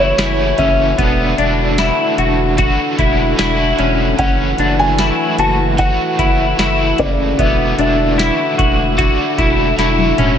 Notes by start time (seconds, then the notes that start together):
Already playing: F#1 C#3 E3 A3 C#4 E4 F#4 C#5
0.00 C#5
0.17 F#1 C#3 E3 E4, snare, closed hi-hat, tambourine
0.21 A3 C#4
0.58 F#1 C#4 E5, kick, closed hi-hat
0.96 E1 D3 E3 A3 B3 E4, kick, closed hi-hat
1.02 D4 F#4
1.38 E1 D4, closed hi-hat
1.78 E4, snare, closed hi-hat, tambourine
2.18 E1 F#4, closed hi-hat
2.57 E3 A3 D4 F#4, kick, closed hi-hat
2.63 F#4
2.99 E1 E4, kick, closed hi-hat
3.37 E1 E3 A3 E4, snare, closed hi-hat, tambourine
3.41 D4 F#4
3.79 E1 C#4, closed hi-hat
4.16 F#1 E3 F#3 A3 C#4 F#5, kick, closed hi-hat
4.21 E4 F#4
4.25 C#5
4.58 F#1 D4, closed hi-hat
4.79 G#5
4.98 E4, snare, closed hi-hat, tambourine
5.38 F#1 F#4 A5, closed hi-hat
5.77 A3 E4 F#4 F#5, kick, closed hi-hat
5.81 F#4 C#5
6.19 F#1 E4, kick, closed hi-hat
6.57 F#1 A3 E4, snare, closed hi-hat, tambourine
6.62 F#4
6.98 F#1 C#3 D5, kick, closed hi-hat
7.37 E1 D3 E3 A3 B3 E5, kick, closed hi-hat
7.42 E4 F#4 D5
7.78 E1 D4 E5, closed hi-hat
8.18 E4, snare, closed hi-hat, tambourine
8.58 E1 F#4, kick, closed hi-hat
8.97 A3 E4 F#4, kick, closed hi-hat
9.01 F#4 D5
9.38 E1 E4, kick, closed hi-hat
9.77 E1 A3 E4 F#4, snare, closed hi-hat
9.98 high tom
10.18 E1 C#4, closed hi-hat, mid tom